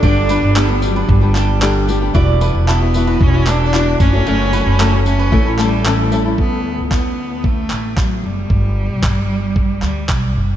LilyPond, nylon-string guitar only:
\new Staff \with { instrumentName = "Nylon-string guitar" } { \time 4/4 \key d \major \tempo 4 = 113 <g, d g b d' g'>8 <g b d' g'>8 <g, d g b d' g'>16 <g b d' g'>16 <g b d' g'>16 <g b d' g'>8 <g b d' g'>16 <g b d' g'>8 <g, d g b d' g'>8 <g b d' g'>16 <g b d' g'>16 | <e b e' fis'>8 <e b e' fis'>8 <e b e' fis'>16 <b e' fis'>16 <e b e' fis'>16 <b e' fis'>8 <b e' fis'>16 <e b e' fis'>8 <e b e' fis'>8 <fis a cis' fis'>16 <fis a cis' fis'>16 | <fis, cis fis a cis' fis'>8 <fis a cis' fis'>8 <fis, cis fis a cis' fis'>16 <fis a cis' fis'>16 <fis a cis' fis'>8 <a, e a cis' e' a'>16 <a cis' e' a'>16 <a cis' e' a'>8 <a, e a cis' e' a'>8 <a cis' e' a'>16 <a cis' e' a'>16 | r1 |
r1 | }